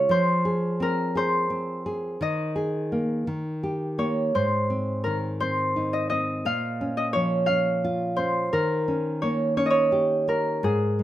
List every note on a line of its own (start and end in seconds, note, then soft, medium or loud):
0.00 1.37 G#4 medium
0.00 0.82 A#4 medium
0.00 0.17 C#5 medium
0.09 2.16 F3 medium
0.09 1.17 C5 medium
0.45 1.14 G#4 soft
0.80 1.49 C4 soft
0.80 2.94 A#4 medium
1.15 1.85 G#4 soft
1.15 3.15 C5 medium
1.50 2.18 C4 medium
1.86 2.20 G#4 soft
2.21 3.24 D#3 medium
2.21 4.01 D#5 medium
2.56 3.24 G#4 soft
2.92 3.26 A#3 soft
3.27 4.31 D#3 medium
3.63 4.32 G4 soft
3.98 4.33 A#3 soft
3.98 4.41 C#5 medium
4.35 6.43 G#2 medium
4.35 5.40 C5 medium
4.70 5.41 C4 soft
5.04 6.43 D#3 soft
5.04 5.14 A#4 medium
5.40 6.11 C4 soft
5.40 7.19 C5 medium
5.76 6.44 D#4 soft
5.93 6.09 D#5 medium
6.10 6.45 C4 soft
6.10 6.97 D#5 medium
6.45 8.49 A#2 medium
6.45 7.46 F5 medium
6.81 7.48 C#4 soft
6.97 7.03 D#5 medium
7.13 8.50 F3 soft
7.13 8.22 C#5 medium
7.46 8.17 C#4 soft
7.46 9.13 F5 medium
7.84 8.52 F4 soft
8.16 8.52 C#4 soft
8.16 9.28 C5 medium
8.53 10.61 D#3 medium
8.53 10.28 A#4 medium
8.88 9.56 C#4 soft
9.22 10.61 A#3 soft
9.22 9.57 C#5 medium
9.57 10.27 C#4 soft
9.57 9.70 C#5 medium
9.66 11.03 D#5 medium
9.70 11.03 C#5 medium
9.92 10.62 G4 soft
10.28 10.63 C#4 soft
10.28 11.03 A#4 medium
10.63 11.03 G#2 medium
10.63 11.03 G#4 medium
10.99 11.03 G#3 soft